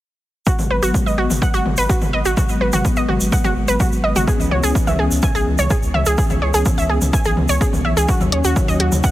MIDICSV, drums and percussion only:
0, 0, Header, 1, 2, 480
1, 0, Start_track
1, 0, Key_signature, 5, "minor"
1, 0, Tempo, 476190
1, 470, Time_signature, 4, 2, 24, 8
1, 9184, End_track
2, 0, Start_track
2, 0, Title_t, "Drums"
2, 468, Note_on_c, 9, 82, 58
2, 470, Note_on_c, 9, 36, 109
2, 569, Note_off_c, 9, 82, 0
2, 571, Note_off_c, 9, 36, 0
2, 593, Note_on_c, 9, 47, 88
2, 593, Note_on_c, 9, 82, 37
2, 693, Note_off_c, 9, 47, 0
2, 694, Note_off_c, 9, 82, 0
2, 837, Note_on_c, 9, 82, 62
2, 938, Note_off_c, 9, 82, 0
2, 950, Note_on_c, 9, 36, 103
2, 950, Note_on_c, 9, 47, 87
2, 955, Note_on_c, 9, 82, 63
2, 1050, Note_off_c, 9, 47, 0
2, 1051, Note_off_c, 9, 36, 0
2, 1056, Note_off_c, 9, 82, 0
2, 1081, Note_on_c, 9, 82, 34
2, 1181, Note_off_c, 9, 82, 0
2, 1313, Note_on_c, 9, 47, 89
2, 1317, Note_on_c, 9, 82, 72
2, 1414, Note_off_c, 9, 47, 0
2, 1418, Note_off_c, 9, 82, 0
2, 1430, Note_on_c, 9, 36, 112
2, 1434, Note_on_c, 9, 82, 58
2, 1531, Note_off_c, 9, 36, 0
2, 1535, Note_off_c, 9, 82, 0
2, 1549, Note_on_c, 9, 82, 37
2, 1649, Note_off_c, 9, 82, 0
2, 1670, Note_on_c, 9, 47, 88
2, 1771, Note_off_c, 9, 47, 0
2, 1784, Note_on_c, 9, 82, 77
2, 1885, Note_off_c, 9, 82, 0
2, 1910, Note_on_c, 9, 36, 107
2, 1911, Note_on_c, 9, 82, 57
2, 2011, Note_off_c, 9, 36, 0
2, 2012, Note_off_c, 9, 82, 0
2, 2029, Note_on_c, 9, 82, 34
2, 2033, Note_on_c, 9, 47, 90
2, 2130, Note_off_c, 9, 82, 0
2, 2134, Note_off_c, 9, 47, 0
2, 2270, Note_on_c, 9, 82, 66
2, 2371, Note_off_c, 9, 82, 0
2, 2390, Note_on_c, 9, 36, 112
2, 2390, Note_on_c, 9, 47, 90
2, 2391, Note_on_c, 9, 82, 58
2, 2491, Note_off_c, 9, 36, 0
2, 2491, Note_off_c, 9, 47, 0
2, 2491, Note_off_c, 9, 82, 0
2, 2505, Note_on_c, 9, 82, 37
2, 2606, Note_off_c, 9, 82, 0
2, 2748, Note_on_c, 9, 82, 71
2, 2753, Note_on_c, 9, 47, 90
2, 2849, Note_off_c, 9, 82, 0
2, 2854, Note_off_c, 9, 47, 0
2, 2870, Note_on_c, 9, 36, 109
2, 2871, Note_on_c, 9, 82, 66
2, 2971, Note_off_c, 9, 36, 0
2, 2972, Note_off_c, 9, 82, 0
2, 2985, Note_on_c, 9, 82, 36
2, 3086, Note_off_c, 9, 82, 0
2, 3110, Note_on_c, 9, 47, 87
2, 3211, Note_off_c, 9, 47, 0
2, 3232, Note_on_c, 9, 82, 76
2, 3332, Note_off_c, 9, 82, 0
2, 3350, Note_on_c, 9, 36, 116
2, 3351, Note_on_c, 9, 82, 64
2, 3451, Note_off_c, 9, 36, 0
2, 3451, Note_off_c, 9, 82, 0
2, 3467, Note_on_c, 9, 82, 39
2, 3473, Note_on_c, 9, 47, 87
2, 3567, Note_off_c, 9, 82, 0
2, 3574, Note_off_c, 9, 47, 0
2, 3710, Note_on_c, 9, 82, 68
2, 3811, Note_off_c, 9, 82, 0
2, 3827, Note_on_c, 9, 82, 64
2, 3830, Note_on_c, 9, 36, 113
2, 3830, Note_on_c, 9, 47, 89
2, 3928, Note_off_c, 9, 82, 0
2, 3930, Note_off_c, 9, 36, 0
2, 3931, Note_off_c, 9, 47, 0
2, 3953, Note_on_c, 9, 82, 39
2, 4054, Note_off_c, 9, 82, 0
2, 4192, Note_on_c, 9, 47, 85
2, 4194, Note_on_c, 9, 82, 75
2, 4293, Note_off_c, 9, 47, 0
2, 4295, Note_off_c, 9, 82, 0
2, 4310, Note_on_c, 9, 36, 117
2, 4311, Note_on_c, 9, 82, 56
2, 4410, Note_off_c, 9, 36, 0
2, 4412, Note_off_c, 9, 82, 0
2, 4438, Note_on_c, 9, 82, 36
2, 4539, Note_off_c, 9, 82, 0
2, 4550, Note_on_c, 9, 47, 80
2, 4651, Note_off_c, 9, 47, 0
2, 4672, Note_on_c, 9, 82, 79
2, 4772, Note_off_c, 9, 82, 0
2, 4789, Note_on_c, 9, 36, 113
2, 4794, Note_on_c, 9, 82, 67
2, 4890, Note_off_c, 9, 36, 0
2, 4895, Note_off_c, 9, 82, 0
2, 4910, Note_on_c, 9, 82, 39
2, 4912, Note_on_c, 9, 47, 88
2, 5011, Note_off_c, 9, 82, 0
2, 5013, Note_off_c, 9, 47, 0
2, 5154, Note_on_c, 9, 82, 72
2, 5255, Note_off_c, 9, 82, 0
2, 5263, Note_on_c, 9, 82, 63
2, 5269, Note_on_c, 9, 36, 119
2, 5269, Note_on_c, 9, 47, 83
2, 5364, Note_off_c, 9, 82, 0
2, 5370, Note_off_c, 9, 36, 0
2, 5370, Note_off_c, 9, 47, 0
2, 5395, Note_on_c, 9, 82, 39
2, 5496, Note_off_c, 9, 82, 0
2, 5628, Note_on_c, 9, 82, 73
2, 5632, Note_on_c, 9, 47, 86
2, 5728, Note_off_c, 9, 82, 0
2, 5733, Note_off_c, 9, 47, 0
2, 5748, Note_on_c, 9, 82, 64
2, 5749, Note_on_c, 9, 36, 111
2, 5848, Note_off_c, 9, 82, 0
2, 5850, Note_off_c, 9, 36, 0
2, 5872, Note_on_c, 9, 82, 36
2, 5973, Note_off_c, 9, 82, 0
2, 5989, Note_on_c, 9, 47, 84
2, 6090, Note_off_c, 9, 47, 0
2, 6107, Note_on_c, 9, 82, 87
2, 6208, Note_off_c, 9, 82, 0
2, 6226, Note_on_c, 9, 82, 60
2, 6229, Note_on_c, 9, 36, 115
2, 6327, Note_off_c, 9, 82, 0
2, 6330, Note_off_c, 9, 36, 0
2, 6347, Note_on_c, 9, 82, 39
2, 6352, Note_on_c, 9, 47, 82
2, 6448, Note_off_c, 9, 82, 0
2, 6453, Note_off_c, 9, 47, 0
2, 6593, Note_on_c, 9, 82, 78
2, 6693, Note_off_c, 9, 82, 0
2, 6707, Note_on_c, 9, 82, 67
2, 6709, Note_on_c, 9, 36, 117
2, 6709, Note_on_c, 9, 47, 79
2, 6808, Note_off_c, 9, 82, 0
2, 6810, Note_off_c, 9, 36, 0
2, 6810, Note_off_c, 9, 47, 0
2, 6834, Note_on_c, 9, 82, 41
2, 6935, Note_off_c, 9, 82, 0
2, 7072, Note_on_c, 9, 47, 81
2, 7072, Note_on_c, 9, 82, 74
2, 7173, Note_off_c, 9, 47, 0
2, 7173, Note_off_c, 9, 82, 0
2, 7189, Note_on_c, 9, 36, 120
2, 7190, Note_on_c, 9, 82, 71
2, 7290, Note_off_c, 9, 36, 0
2, 7291, Note_off_c, 9, 82, 0
2, 7299, Note_on_c, 9, 82, 38
2, 7400, Note_off_c, 9, 82, 0
2, 7429, Note_on_c, 9, 47, 81
2, 7530, Note_off_c, 9, 47, 0
2, 7546, Note_on_c, 9, 82, 73
2, 7646, Note_off_c, 9, 82, 0
2, 7670, Note_on_c, 9, 36, 110
2, 7672, Note_on_c, 9, 82, 62
2, 7770, Note_off_c, 9, 36, 0
2, 7773, Note_off_c, 9, 82, 0
2, 7792, Note_on_c, 9, 47, 87
2, 7797, Note_on_c, 9, 82, 35
2, 7893, Note_off_c, 9, 47, 0
2, 7898, Note_off_c, 9, 82, 0
2, 8037, Note_on_c, 9, 82, 79
2, 8138, Note_off_c, 9, 82, 0
2, 8146, Note_on_c, 9, 82, 58
2, 8150, Note_on_c, 9, 36, 113
2, 8246, Note_off_c, 9, 82, 0
2, 8250, Note_off_c, 9, 36, 0
2, 8271, Note_on_c, 9, 82, 41
2, 8272, Note_on_c, 9, 47, 84
2, 8372, Note_off_c, 9, 82, 0
2, 8373, Note_off_c, 9, 47, 0
2, 8390, Note_on_c, 9, 42, 97
2, 8490, Note_off_c, 9, 42, 0
2, 8509, Note_on_c, 9, 82, 78
2, 8610, Note_off_c, 9, 82, 0
2, 8630, Note_on_c, 9, 36, 106
2, 8630, Note_on_c, 9, 47, 85
2, 8631, Note_on_c, 9, 82, 66
2, 8731, Note_off_c, 9, 36, 0
2, 8731, Note_off_c, 9, 47, 0
2, 8731, Note_off_c, 9, 82, 0
2, 8754, Note_on_c, 9, 82, 41
2, 8855, Note_off_c, 9, 82, 0
2, 8870, Note_on_c, 9, 42, 98
2, 8971, Note_off_c, 9, 42, 0
2, 8993, Note_on_c, 9, 47, 84
2, 8993, Note_on_c, 9, 82, 76
2, 9093, Note_off_c, 9, 47, 0
2, 9094, Note_off_c, 9, 82, 0
2, 9107, Note_on_c, 9, 82, 64
2, 9110, Note_on_c, 9, 36, 116
2, 9184, Note_off_c, 9, 36, 0
2, 9184, Note_off_c, 9, 82, 0
2, 9184, End_track
0, 0, End_of_file